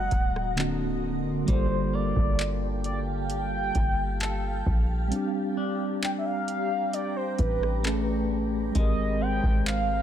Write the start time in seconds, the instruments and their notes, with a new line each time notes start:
Already playing: tine electric piano F#3 G#3 A#3 F#4, clean electric guitar F#3 A#3, ambient pad F#4 D#5 A#5, soft synth lead F#5
0.11 808-style bass D1, kick, closed hi-hat
0.36 cross-stick
0.56 tine electric piano D3 A#3 C4, clean electric guitar D3, clap, closed hi-hat
0.60 tine electric piano F#4
1.45 808-style bass G1, tine electric piano G3 A#3, clean electric guitar G3, ambient pad F5 G5 A5, kick, closed hi-hat
1.49 tine electric piano F4 A4, ambient pad G4, soft synth lead C5
1.94 clean electric guitar A#3, soft synth lead D5
2.16 808-style bass G1, kick
2.39 clap, closed hi-hat
2.84 soft synth lead D5, closed hi-hat
3.30 soft synth lead G5, closed hi-hat
3.75 808-style bass G1, kick, closed hi-hat
4.20 clean electric guitar A4, clap, closed hi-hat
4.66 808-style bass A#1, kick
5.08 tine electric piano G3 C4, ambient pad D5 G5 A#5, closed hi-hat
5.13 tine electric piano D4 G4
5.57 clean electric guitar D4
6.03 soft synth lead G5, clap, closed hi-hat
6.19 soft synth lead E5
6.26 soft synth lead F5
6.48 closed hi-hat
6.93 soft synth lead D5, closed hi-hat
7.16 soft synth lead C5
7.38 808-style bass A1, soft synth lead B4, kick, closed hi-hat
7.63 cross-stick
7.83 tine electric piano A3 C#4 G#4 B4, clean electric guitar A3, clap, closed hi-hat
8.72 808-style bass G#1, tine electric piano G#3 C4, clean electric guitar G#3, ambient pad G#3 C5 G5 A#5, kick, closed hi-hat
8.76 tine electric piano G4 A#4, soft synth lead D#5
9.21 clean electric guitar C4, soft synth lead G5
9.43 808-style bass G#1, kick
9.66 soft synth lead F5, clap, closed hi-hat